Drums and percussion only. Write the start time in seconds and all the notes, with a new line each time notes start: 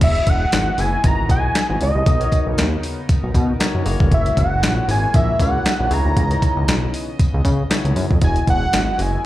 0.01 kick, closed hi-hat, crash, tambourine
0.15 closed hi-hat
0.27 kick, closed hi-hat
0.52 snare, clap, closed hi-hat, tambourine
0.78 open hi-hat, tambourine
1.04 kick, closed hi-hat, tambourine
1.29 kick, closed hi-hat, tambourine
1.55 snare, clap, closed hi-hat, tambourine
1.81 open hi-hat, tambourine
2.06 kick, closed hi-hat, tambourine
2.21 closed hi-hat
2.32 kick, closed hi-hat, tambourine
2.58 snare, clap, closed hi-hat, tambourine
2.83 open hi-hat, tambourine
3.09 kick, closed hi-hat, tambourine
3.34 kick, closed hi-hat, tambourine
3.60 snare, clap, closed hi-hat, tambourine
3.86 open hi-hat, tambourine
4.00 kick
4.11 kick, closed hi-hat
4.26 closed hi-hat
4.37 kick, closed hi-hat, tambourine
4.63 snare, clap, closed hi-hat, tambourine
4.89 open hi-hat, tambourine
5.14 kick, closed hi-hat, tambourine
5.40 kick, closed hi-hat, tambourine
5.66 snare, clap, closed hi-hat, tambourine
5.91 open hi-hat, tambourine
6.17 kick, closed hi-hat
6.31 closed hi-hat
6.42 kick, closed hi-hat, tambourine
6.68 snare, clap, closed hi-hat, tambourine
6.94 open hi-hat, tambourine
7.20 kick, closed hi-hat, tambourine
7.45 kick, closed hi-hat, tambourine
7.71 snare, clap, closed hi-hat, tambourine
7.85 closed hi-hat
7.96 open hi-hat, tambourine
8.11 kick
8.21 kick, closed hi-hat, tambourine
8.36 closed hi-hat
8.47 kick, closed hi-hat
8.73 snare, clap, closed hi-hat, tambourine
8.99 open hi-hat, tambourine